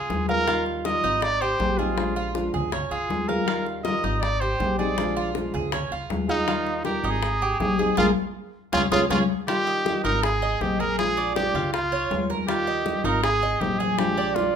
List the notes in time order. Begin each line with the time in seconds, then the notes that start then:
Already playing: F4 G#4
0.09 D#2 G#3 B3 F4 G#4, high bongo, low bongo, high conga
0.28 G#3 B3 F4 G#4 A#4 F5, high bongo, high conga
0.47 D#3 G3 D#4 F4, high bongo
0.66 high bongo, high conga
0.85 D#3 G3 D#4 F4 A#4 D#5, high bongo, high conga
1.04 G#1 D#4, high bongo, high conga
1.22 D5, muted nylon-string guitar stroke, high bongo, high conga
1.41 G4 C5, high conga
1.59 A#1 G3 C4 D#4 G#4, high bongo, low bongo, high conga
1.78 G3 C4 D#4 F4 G#4, high bongo, high conga
1.97 F3 G#3 D4 F4, high bongo, high conga
2.16 F4, high bongo, high conga
2.34 F3 G#3 D4 F4, high bongo, high conga
2.54 C#2 G#4, high bongo, high conga, low conga
2.72 C#4, muted nylon-string guitar stroke, high bongo, high conga, low conga
2.91 C#2 F4 G#4, high conga
3.09 D#2 G#3 B3 F4 G#4, high bongo, low bongo, high conga
3.28 G#3 B3 F4 G#4 A#4 F5, high bongo, high conga
3.46 D#3 G3 D#4 F4, high bongo, high conga
3.66 high bongo, high conga
3.84 D#3 G3 D#4 F4 A#4 D#5, high bongo, high conga
4.04 G#1 D#4, high bongo, high conga
4.21 D5, muted nylon-string guitar stroke, high bongo, high conga
4.41 G4 C5, high conga
4.60 A#1 G3 C4 D#4 G#4, high bongo, low bongo, high conga
4.79 G3 C4 D#4 G#4 D5, high bongo, high conga
4.98 F3 G#3 D4 F4, high bongo, high conga
5.16 F4, high bongo, high conga
5.34 F3 G#3 D4 F4, high bongo, high conga
5.54 C#2 G#4, high bongo, high conga, low conga
5.72 C#4, muted nylon-string guitar stroke, high bongo, high conga, low conga
5.91 C#2 F4, high conga
6.10 D#2 G#3 B3 F4 G#4, high bongo, low bongo, high conga
6.28 G#3 B3 D#4 F4 G#4 F5, high bongo, high conga
6.47 D#3 G3 D#4 F4, high bongo, high conga
6.67 high bongo, high conga
6.85 D#3 G3 D#4 F4 G4 A#4, high bongo, high conga
7.04 G#1 D#4, high bongo, high conga
7.10 G#4
7.22 muted nylon-string guitar stroke, high bongo, high conga
7.41 G4, high conga
7.60 A#1 G3 C4 D#4 G#4, high bongo, low bongo, high conga
7.79 G3 C4 D#4 G#4, high bongo, high conga
7.97 A#1 G#3 A#3 D4 F4 G#4 A#4, high bongo, high conga
8.73 C#2 G#3 B3 C#4 F4 G#4, high bongo, high conga
8.91 C#2 G#3 B3 C#4 F4 G#4, high bongo, high conga
9.10 C#2 G#3 B3 C#4 F4 G#4, high bongo, high conga
9.47 D#3 G3 D#4 F4 G4, high bongo, high conga
9.67 D#5, high bongo, high conga
9.85 D#3 G3 D#4 F4, high bongo, high conga
10.04 G#1 G3 D#4 F4 A#4, high bongo
10.23 G#4, muted nylon-string guitar stroke, high bongo, high conga
10.42 D#5, high conga
10.61 A#1 C4 D#4 G4 G#4, high bongo, low bongo, high conga
10.80 G#4 A#4, high bongo, high conga
10.98 F3 G#3 D4 F4 G#4, high bongo, high conga
11.17 D5, high bongo, high conga
11.36 F3 G#3 D4 F4 G4, high bongo, high conga
11.54 C#2 G#3 D4 F4, high bongo, high conga, low conga
11.73 F4, muted nylon-string guitar stroke, high bongo, high conga
11.92 C#5, high conga
12.10 D#2 G#3 B3 F4 G#4, high bongo, low bongo, high conga
12.30 A#4, high bongo, high conga
12.48 D#3 G3 D#4 F4 G4, high bongo, high conga
12.67 D#5, high bongo, high conga
12.85 D#3 G3 D#4 F4, high bongo, high conga
13.04 G#1 G3 D#4 F4 A#4, high bongo
13.23 G#4, muted nylon-string guitar stroke, high bongo, high conga
13.43 D#5, high conga
13.61 A#1 C4 D#4 G4 G#4, high bongo, low bongo, high conga
13.79 G#4, high bongo, high conga
13.98 F3 G#3 D4 F4 G4, high bongo, high conga
14.17 D5, high bongo
14.35 F3 G#3 D4 F4, high bongo, high conga